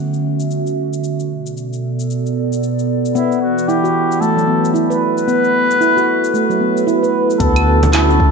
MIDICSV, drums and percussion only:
0, 0, Header, 1, 3, 480
1, 0, Start_track
1, 0, Key_signature, 2, "minor"
1, 0, Tempo, 530973
1, 931, Time_signature, 4, 2, 24, 8
1, 7516, End_track
2, 0, Start_track
2, 0, Title_t, "Frame drum"
2, 7079, Note_on_c, 9, 64, 89
2, 7169, Note_off_c, 9, 64, 0
2, 7516, End_track
3, 0, Start_track
3, 0, Title_t, "Drums"
3, 121, Note_on_c, 9, 69, 28
3, 212, Note_off_c, 9, 69, 0
3, 360, Note_on_c, 9, 69, 60
3, 450, Note_off_c, 9, 69, 0
3, 459, Note_on_c, 9, 69, 49
3, 549, Note_off_c, 9, 69, 0
3, 602, Note_on_c, 9, 69, 29
3, 693, Note_off_c, 9, 69, 0
3, 843, Note_on_c, 9, 69, 56
3, 933, Note_off_c, 9, 69, 0
3, 938, Note_on_c, 9, 69, 52
3, 1028, Note_off_c, 9, 69, 0
3, 1081, Note_on_c, 9, 69, 30
3, 1172, Note_off_c, 9, 69, 0
3, 1323, Note_on_c, 9, 69, 56
3, 1413, Note_off_c, 9, 69, 0
3, 1420, Note_on_c, 9, 69, 47
3, 1511, Note_off_c, 9, 69, 0
3, 1564, Note_on_c, 9, 69, 29
3, 1655, Note_off_c, 9, 69, 0
3, 1804, Note_on_c, 9, 69, 60
3, 1895, Note_off_c, 9, 69, 0
3, 1902, Note_on_c, 9, 69, 48
3, 1992, Note_off_c, 9, 69, 0
3, 2045, Note_on_c, 9, 69, 30
3, 2136, Note_off_c, 9, 69, 0
3, 2284, Note_on_c, 9, 69, 59
3, 2374, Note_off_c, 9, 69, 0
3, 2380, Note_on_c, 9, 69, 50
3, 2471, Note_off_c, 9, 69, 0
3, 2522, Note_on_c, 9, 69, 30
3, 2612, Note_off_c, 9, 69, 0
3, 2761, Note_on_c, 9, 69, 60
3, 2851, Note_off_c, 9, 69, 0
3, 2855, Note_on_c, 9, 69, 53
3, 2945, Note_off_c, 9, 69, 0
3, 3000, Note_on_c, 9, 69, 29
3, 3090, Note_off_c, 9, 69, 0
3, 3240, Note_on_c, 9, 69, 64
3, 3330, Note_off_c, 9, 69, 0
3, 3338, Note_on_c, 9, 69, 52
3, 3429, Note_off_c, 9, 69, 0
3, 3481, Note_on_c, 9, 69, 32
3, 3572, Note_off_c, 9, 69, 0
3, 3722, Note_on_c, 9, 69, 67
3, 3812, Note_off_c, 9, 69, 0
3, 3817, Note_on_c, 9, 69, 49
3, 3908, Note_off_c, 9, 69, 0
3, 3962, Note_on_c, 9, 69, 34
3, 4052, Note_off_c, 9, 69, 0
3, 4202, Note_on_c, 9, 69, 60
3, 4292, Note_off_c, 9, 69, 0
3, 4297, Note_on_c, 9, 69, 51
3, 4387, Note_off_c, 9, 69, 0
3, 4440, Note_on_c, 9, 69, 31
3, 4530, Note_off_c, 9, 69, 0
3, 4679, Note_on_c, 9, 69, 61
3, 4770, Note_off_c, 9, 69, 0
3, 4776, Note_on_c, 9, 69, 54
3, 4867, Note_off_c, 9, 69, 0
3, 4920, Note_on_c, 9, 69, 31
3, 5010, Note_off_c, 9, 69, 0
3, 5159, Note_on_c, 9, 69, 63
3, 5250, Note_off_c, 9, 69, 0
3, 5256, Note_on_c, 9, 69, 53
3, 5347, Note_off_c, 9, 69, 0
3, 5402, Note_on_c, 9, 69, 31
3, 5493, Note_off_c, 9, 69, 0
3, 5643, Note_on_c, 9, 69, 67
3, 5733, Note_off_c, 9, 69, 0
3, 5738, Note_on_c, 9, 69, 51
3, 5828, Note_off_c, 9, 69, 0
3, 5882, Note_on_c, 9, 69, 31
3, 5973, Note_off_c, 9, 69, 0
3, 6123, Note_on_c, 9, 69, 64
3, 6213, Note_off_c, 9, 69, 0
3, 6220, Note_on_c, 9, 69, 53
3, 6310, Note_off_c, 9, 69, 0
3, 6363, Note_on_c, 9, 69, 30
3, 6454, Note_off_c, 9, 69, 0
3, 6602, Note_on_c, 9, 69, 59
3, 6690, Note_on_c, 9, 36, 117
3, 6691, Note_on_c, 9, 42, 69
3, 6693, Note_off_c, 9, 69, 0
3, 6699, Note_on_c, 9, 69, 60
3, 6780, Note_off_c, 9, 36, 0
3, 6782, Note_off_c, 9, 42, 0
3, 6789, Note_off_c, 9, 69, 0
3, 6836, Note_on_c, 9, 42, 48
3, 6836, Note_on_c, 9, 75, 84
3, 6843, Note_on_c, 9, 69, 32
3, 6926, Note_off_c, 9, 42, 0
3, 6926, Note_off_c, 9, 75, 0
3, 6934, Note_off_c, 9, 69, 0
3, 7077, Note_on_c, 9, 42, 31
3, 7084, Note_on_c, 9, 69, 64
3, 7167, Note_off_c, 9, 42, 0
3, 7172, Note_on_c, 9, 39, 102
3, 7172, Note_on_c, 9, 42, 64
3, 7172, Note_on_c, 9, 75, 78
3, 7174, Note_off_c, 9, 69, 0
3, 7179, Note_on_c, 9, 69, 56
3, 7262, Note_off_c, 9, 39, 0
3, 7262, Note_off_c, 9, 42, 0
3, 7262, Note_off_c, 9, 75, 0
3, 7270, Note_off_c, 9, 69, 0
3, 7323, Note_on_c, 9, 69, 33
3, 7410, Note_on_c, 9, 36, 106
3, 7413, Note_off_c, 9, 69, 0
3, 7501, Note_off_c, 9, 36, 0
3, 7516, End_track
0, 0, End_of_file